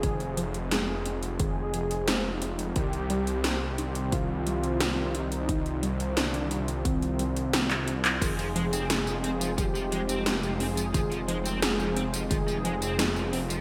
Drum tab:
CC |----------------|----------------|----------------|x---------------|
HH |xxxxx-xxx-xxx-xx|xxxxx-xxx-xxx-xx|xxxxxxxxxxxxxxxx|xxxxx-xxx-xxx-ox|
TB |----------------|----------------|----------------|xx-xxx-xxx-xxx-x|
CP |----------------|----------------|-------------x-x|----------------|
SD |----o-------o---|----o-------o---|----o-------o---|----o-------o---|
BD |o-------o-------|o-------o-------|o-------o-------|o-------o-------|

CC |----------------|
HH |xxxxx-xxx-xxx-ox|
TB |xx-xxx-xxx-xxx-x|
CP |----------------|
SD |----o-------o---|
BD |o-------o-------|